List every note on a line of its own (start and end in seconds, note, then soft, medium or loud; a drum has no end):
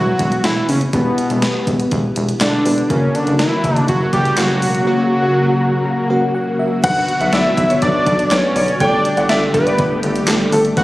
0.00 0.12 E1 loud
0.00 0.89 G3 medium
0.00 0.89 B3 medium
0.00 0.89 E4 medium
0.00 0.41 F#4 loud
0.00 0.89 B4 medium
0.19 0.37 E1 loud
0.19 kick medium
0.19 closed hi-hat medium
0.32 closed hi-hat medium
0.44 0.61 E1 loud
0.44 0.67 E4 loud
0.44 snare loud
0.44 closed hi-hat medium
0.69 0.86 F#1 medium
0.69 0.80 C#4 medium
0.69 open hi-hat medium
0.81 closed hi-hat medium
0.93 1.11 E1 loud
0.93 2.62 B3 medium
0.93 1.88 B3 medium
0.93 2.62 E4 medium
0.93 2.62 G4 medium
0.93 2.62 B4 medium
0.93 kick loud
0.93 closed hi-hat medium
1.18 closed hi-hat medium
1.30 1.48 E1 loud
1.30 closed hi-hat soft
1.42 snare loud
1.42 closed hi-hat medium
1.67 1.84 E1 medium
1.67 kick medium
1.67 closed hi-hat medium
1.80 closed hi-hat medium
1.91 2.09 E1 loud
1.91 kick medium
1.91 closed hi-hat medium
2.16 2.34 E1 loud
2.16 closed hi-hat medium
2.29 closed hi-hat medium
2.41 2.58 E1 loud
2.41 2.92 D4 medium
2.41 snare loud
2.41 clap medium
2.41 closed hi-hat medium
2.65 2.83 E1 medium
2.65 2.90 B3 soft
2.65 2.90 E4 soft
2.65 2.90 G4 soft
2.65 2.90 B4 medium
2.65 open hi-hat medium
2.78 closed hi-hat soft
2.90 3.07 F#1 loud
2.90 6.80 C#3 medium
2.90 6.80 A#3 medium
2.90 4.83 A#3 medium
2.90 4.83 C#4 medium
2.90 3.16 C#4 loud
2.90 6.80 F#4 medium
2.90 4.83 F#4 medium
2.90 4.83 A#4 medium
2.90 kick loud
2.90 closed hi-hat medium
3.15 3.39 D4 loud
3.15 closed hi-hat medium
3.27 3.44 F#1 loud
3.27 closed hi-hat medium
3.39 3.85 E4 loud
3.39 snare loud
3.39 closed hi-hat medium
3.64 3.81 F#1 medium
3.64 kick medium
3.64 closed hi-hat medium
3.76 closed hi-hat medium
3.88 4.06 F#1 loud
3.88 4.12 F#4 loud
3.88 kick medium
3.88 closed hi-hat medium
4.13 4.30 F#1 loud
4.13 4.39 G4 loud
4.13 kick medium
4.13 closed hi-hat medium
4.25 closed hi-hat medium
4.38 4.64 F#1 loud
4.38 4.86 F#4 loud
4.38 snare loud
4.38 clap medium
4.38 closed hi-hat medium
4.62 4.80 E1 medium
4.62 open hi-hat medium
4.75 closed hi-hat soft
4.87 6.07 A#3 medium
4.87 6.07 C#4 medium
4.87 6.07 F#4 medium
4.87 6.30 F#4 loud
4.87 6.07 A#4 medium
5.61 5.84 A#5 medium
5.85 6.08 A#5 medium
6.10 6.84 A#3 medium
6.10 6.84 C#4 medium
6.10 6.83 F#4 medium
6.10 6.84 A#4 medium
6.10 6.33 F#5 medium
6.35 6.57 F#5 medium
6.59 6.82 E5 medium
6.84 7.01 B1 loud
6.84 8.78 D3 medium
6.84 8.78 B3 medium
6.84 8.28 B3 medium
6.84 8.28 D4 medium
6.84 8.78 F#4 medium
6.84 8.28 F#4 medium
6.84 8.28 B4 medium
6.84 6.99 F#5 loud
6.84 7.35 F#5 loud
6.84 kick loud
6.84 closed hi-hat medium
6.84 crash loud
7.09 closed hi-hat medium
7.21 7.29 B1 loud
7.21 7.28 E5 medium
7.21 closed hi-hat soft
7.33 7.50 B1 loud
7.33 7.40 D5 medium
7.33 7.82 E5 loud
7.33 snare loud
7.33 closed hi-hat medium
7.57 7.75 B1 loud
7.57 kick medium
7.57 closed hi-hat medium
7.70 8.04 C#5 medium
7.70 closed hi-hat medium
7.82 7.99 B1 loud
7.82 8.33 D5 loud
7.82 kick medium
7.82 closed hi-hat medium
8.06 8.24 B1 loud
8.06 kick medium
8.06 closed hi-hat medium
8.19 closed hi-hat medium
8.31 8.48 B1 loud
8.31 8.80 B3 medium
8.31 8.80 C#4 soft
8.31 8.79 D4 soft
8.31 8.80 F#4 soft
8.31 8.80 B4 medium
8.31 8.80 C#5 loud
8.31 8.39 D5 medium
8.31 snare loud
8.31 clap medium
8.31 closed hi-hat medium
8.56 8.73 B1 loud
8.56 8.63 D5 medium
8.56 open hi-hat medium
8.68 closed hi-hat medium
8.80 8.98 G1 loud
8.80 10.75 D3 medium
8.80 10.25 G3 medium
8.80 10.84 A3 medium
8.80 10.25 A3 medium
8.80 10.25 D4 medium
8.80 10.75 G4 medium
8.80 10.25 G4 medium
8.80 10.25 A4 medium
8.80 9.26 D5 loud
8.80 8.95 G5 loud
8.80 kick loud
8.80 closed hi-hat medium
9.05 closed hi-hat medium
9.17 9.26 G1 medium
9.17 9.25 F#5 medium
9.17 closed hi-hat medium
9.29 9.47 G1 loud
9.29 9.41 D5 medium
9.29 9.37 E5 medium
9.29 snare loud
9.29 closed hi-hat medium
9.54 9.71 G1 medium
9.54 10.00 B4 medium
9.54 kick medium
9.54 closed hi-hat medium
9.66 10.01 D5 medium
9.66 closed hi-hat medium
9.78 9.96 G1 loud
9.78 kick medium
9.78 closed hi-hat medium
10.03 10.20 G1 loud
10.03 closed hi-hat medium
10.16 closed hi-hat medium
10.28 10.45 G1 loud
10.28 10.77 G3 medium
10.28 10.76 A3 medium
10.28 10.77 D4 medium
10.28 10.77 G4 medium
10.28 10.76 A4 medium
10.28 snare loud
10.28 clap medium
10.28 closed hi-hat medium
10.52 10.70 G1 loud
10.52 10.60 A4 medium
10.52 open hi-hat medium
10.65 closed hi-hat medium
10.77 10.84 A1 loud
10.77 10.84 B2 medium
10.77 10.84 A3 medium
10.77 10.84 B3 medium
10.77 10.84 E4 medium
10.77 10.84 A4 medium
10.77 10.84 B4 medium
10.77 10.84 F#5 loud
10.77 kick loud
10.77 closed hi-hat medium